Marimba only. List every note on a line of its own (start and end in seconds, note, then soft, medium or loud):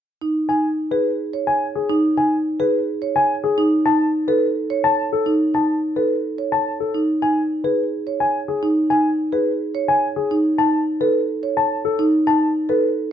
0.22 0.40 D#4 medium
0.50 0.68 D#4 soft
0.92 1.10 G#4 soft
1.33 1.52 C#5 soft
1.89 2.08 D#4 medium
2.18 2.36 D#4 soft
2.60 2.78 G#4 soft
3.02 3.20 C#5 soft
3.58 3.76 D#4 medium
3.86 4.04 D#4 medium
4.28 4.46 A4 medium
4.70 4.88 C#5 medium
5.26 5.44 D#4 medium
5.54 5.72 D#4 soft
5.96 6.14 A4 soft
6.38 6.56 C#5 soft
6.94 7.13 D#4 medium
7.22 7.41 D#4 soft
7.65 7.83 G#4 soft
8.07 8.25 C#5 soft
8.63 8.81 D#4 medium
8.91 9.09 D#4 soft
9.32 9.51 G#4 soft
9.75 9.93 C#5 soft
10.31 10.49 D#4 medium
10.59 10.77 D#4 soft
11.01 11.19 A4 medium
11.43 11.61 C#5 soft
11.99 12.17 D#4 medium
12.27 12.45 D#4 medium
12.69 12.87 A4 medium